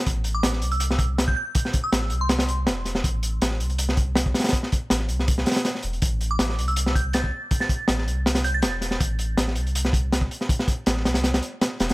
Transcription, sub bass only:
X:1
M:4/4
L:1/8
Q:1/4=161
K:Am
V:1 name="Sub bass" clef=bass
A,,,2 A,,, C,,4 z | z2 A,,, C,,3 E,,,2 | A,,,2 A,,, C,,4 z | z2 A,,, C,,2 z2 E,,, |
A,,,2 A,,, C,,4 z | z2 A,,, C,,3 E,,,2 | A,,,2 A,,, C,,4 z | z2 A,,, C,,2 z2 E,,, |]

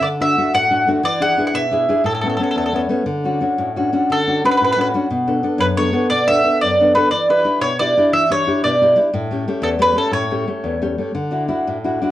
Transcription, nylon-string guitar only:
X:1
M:6/8
L:1/8
Q:3/8=119
K:A
V:1 name="Nylon-string guitar"
D, [A,DF] [A,DF] A,, [A,DF] [A,DF] | E, [DEG] [DEG] B,, [DEG] [DEG] | A,, [A,B,C] [A,B,C] E,, [A,B,C] [A,B,C] | [K:D] D, [CDF] [CDF] A,, [CDF] [CDF] |
D, [CDF] [CDF] A,, [CDF] [CDF] | B,, [B,DA] [B,DA] F,, [B,DA] [B,DA] | B,, [B,DA] [B,DA] F,, [B,DA] [B,DA] | E, [DEG] [DEG] B,, [DEG] [DEG] |
E, [DEG] [DEG] B,, [DEG] [DEG] | A,, [A,CG] [A,CG] E,, [A,CG] [A,CG] | A,, [A,CG] [A,CG] E,, [A,CG] [A,CG] | D, [DEF] [DEF] A,, [DEF] [DEF] |]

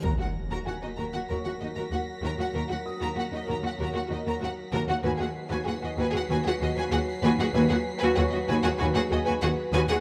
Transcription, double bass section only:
X:1
M:4/4
L:1/16
Q:1/4=96
K:Abdor
V:1 name="Double bass section" clef=bass
E,, z3 E,, z E,, z E,, z E,, z E,, z E,, z | E,, z3 E,, z E,, z E,, z E,, z E,, z E,, z | E,, z3 E,, z E,, z E,, z E,, z E,, z E,, z | E,, z3 E,, z E,, z E,, z E,, z E,, z E,, z |]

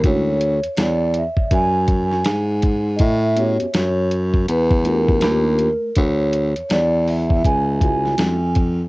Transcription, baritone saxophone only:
X:1
M:4/4
L:1/16
Q:"Swing 16ths" 1/4=81
K:Dlyd
V:1 name="Baritone saxophone" clef=bass
D,,3 E,, E,,3 z F,,4 G,,4 | A,,3 F,, F,,4 E,,4 ^D,,3 z | D,,3 E,, E,,4 C,,4 ^E,,4 |]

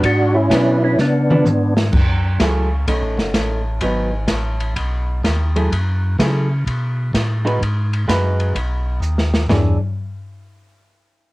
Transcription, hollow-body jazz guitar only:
X:1
M:4/4
L:1/8
Q:"Swing" 1/4=127
K:Bdor
V:1 name="Hollow-body jazz guitar"
z2 [F,B,D]2 z [^E,B,D] z2 | z2 [F,A,EG] z [A,C^D]3 z | [F,B,^D] z6 [F,A,EG] | z2 [F,A,EG] z4 [G,^DFB] |
z2 [G,^DFB]2 z4 | [E,DGc] z6 z |]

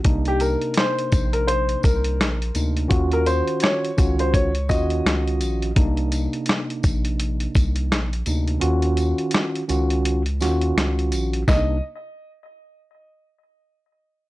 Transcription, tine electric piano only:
X:1
M:4/4
L:1/8
Q:"Swing 16ths" 1/4=84
K:Eblyd
V:1 name="Tine electric piano"
[C,B,DE]6 z [C,B,DE] | [E,_DF_G]3 [E,DFG] z [E,DFG]3 | [C,B,DE]6 z [C,B,DE] | [E,_DF_G]3 [E,DFG] z [E,DFG]3 |
[C,B,DE] z6 z |]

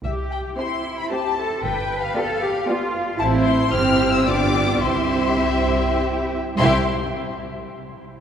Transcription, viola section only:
X:1
M:3/4
L:1/8
Q:1/4=110
K:C
V:1 name="Viola section"
z2 [CE]2 [CE]2 | z2 [B,F]2 [B,F]2 | [CE]2 [CE]2 [B,F]2 | [CE]4- [CE] z |
[CE] z4 z |]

